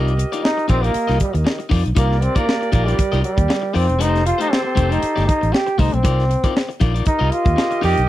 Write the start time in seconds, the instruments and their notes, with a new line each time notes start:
Already playing: fingered electric bass C2, clean electric guitar D#4 F4 A#4 D5, horn section G4 A#4 D#5
0.08 closed hi-hat
0.17 muted clean electric guitar stroke, closed hi-hat
0.32 clean electric guitar D#4 F4 A#4 D5, closed hi-hat
0.43 trombone D#4, muted clean electric guitar stroke, snare
0.58 muted clean electric guitar stroke, closed hi-hat
0.68 fingered electric bass A#1, trombone C4, clean electric guitar D#4 F4 A#4 D5, kick, closed hi-hat
0.82 trombone A#3, clean electric guitar D#4 F4 A#4 D5, closed hi-hat
0.93 muted clean electric guitar stroke, muted fingered electric bass stroke, closed hi-hat
1.07 fingered electric bass C2, clean electric guitar D#4 F4 A#4 D#5, snare, closed hi-hat
1.19 trombone G3, muted clean electric guitar stroke, kick, closed hi-hat
1.33 fingered electric bass D#2, trombone D#3, muted clean electric guitar stroke, closed hi-hat
1.45 muted clean electric guitar stroke, snare
1.59 muted clean electric guitar stroke, closed hi-hat
1.69 fingered electric bass F2, clean electric guitar D#4 F4 A#4 D5, kick, open hi-hat
1.84 fingered electric bass B1, muted clean electric guitar stroke, closed hi-hat
1.95 fingered electric bass C2, trombone A#3, clean electric guitar D#4 F4 A#4 D5, horn section G4 A#4 D5, kick, closed hi-hat
2.12 snare
2.21 trombone C4, muted clean electric guitar stroke, closed hi-hat
2.35 trombone A#3, clean electric guitar D#4 F4 A#4 D5, kick, closed hi-hat
2.47 muted clean electric guitar stroke, snare
2.61 muted clean electric guitar stroke, closed hi-hat
2.72 fingered electric bass A#1, trombone A#3, clean electric guitar D#4 F4 A#4 D5, kick, closed hi-hat
2.86 trombone G3, clean electric guitar D#4 F4 A#4 D5, closed hi-hat
2.98 muted clean electric guitar stroke, muted fingered electric bass stroke, kick, closed hi-hat
3.12 fingered electric bass C2, clean electric guitar D#4 F4 A#4 D#5, closed hi-hat
3.23 trombone G3, muted clean electric guitar stroke, closed hi-hat
3.37 fingered electric bass D#2, muted clean electric guitar stroke, kick, closed hi-hat
3.49 muted clean electric guitar stroke, snare
3.62 muted clean electric guitar stroke
3.74 fingered electric bass F2, trombone C4, clean electric guitar D#4 F4 A#4 D5, open hi-hat
3.88 fingered electric bass E1, muted clean electric guitar stroke, closed hi-hat
3.99 fingered electric bass F1, clean electric guitar A3 D#4 G4 C5, trombone D#4, horn section G4 A4 C5, closed hi-hat
4.16 snare, closed hi-hat
4.25 trombone F4, muted clean electric guitar stroke, closed hi-hat
4.38 clean electric guitar A3 D#4 G4 C5, trombone D#4, closed hi-hat
4.49 trombone C4, muted clean electric guitar stroke, snare
4.63 trombone C4, muted clean electric guitar stroke
4.75 fingered electric bass F1, clean electric guitar A3 D#4 G4 C5, kick, closed hi-hat
4.89 clean electric guitar A3 D#4 G4 C5, trombone D#4, closed hi-hat
5.01 muted clean electric guitar stroke, muted fingered electric bass stroke, closed hi-hat
5.16 fingered electric bass G1, clean electric guitar A3 D#4 G4 D5, snare, closed hi-hat
5.27 trombone D#4, kick, closed hi-hat
5.41 fingered electric bass A1, muted clean electric guitar stroke, closed hi-hat
5.52 trombone G4, muted clean electric guitar stroke, snare
5.67 muted clean electric guitar stroke, closed hi-hat
5.78 fingered electric bass C2, clean electric guitar A3 D#4 G4 C5, trombone D#4, kick, open hi-hat
5.93 fingered electric bass B1, trombone C4, muted clean electric guitar stroke, closed hi-hat
6.03 fingered electric bass C2, clean electric guitar D#4 F4 A#4 D5, kick, closed hi-hat
6.20 snare, closed hi-hat
6.29 muted clean electric guitar stroke, closed hi-hat
6.44 clean electric guitar D#4 F4 A#4 D5, kick, closed hi-hat
6.55 muted clean electric guitar stroke, snare
6.69 muted clean electric guitar stroke, closed hi-hat
6.80 fingered electric bass A#1, clean electric guitar D#4 F4 A#4 D5, kick, closed hi-hat
6.94 clean electric guitar D#4 F4 A#4 D5, closed hi-hat
7.05 trombone D#4, horn section G4 A#4 D#5, muted clean electric guitar stroke, muted fingered electric bass stroke, kick, closed hi-hat
7.19 fingered electric bass C2, clean electric guitar D#4 F4 A#4 D#5
7.31 trombone F4, muted clean electric guitar stroke, closed hi-hat
7.45 fingered electric bass D#2, muted clean electric guitar stroke, kick, closed hi-hat
7.56 muted clean electric guitar stroke, snare
7.71 muted clean electric guitar stroke, closed hi-hat
7.82 fingered electric bass F2, clean electric guitar D#4 F4 A#4 D5, trombone G4, open hi-hat
7.96 fingered electric bass B1, muted clean electric guitar stroke, closed hi-hat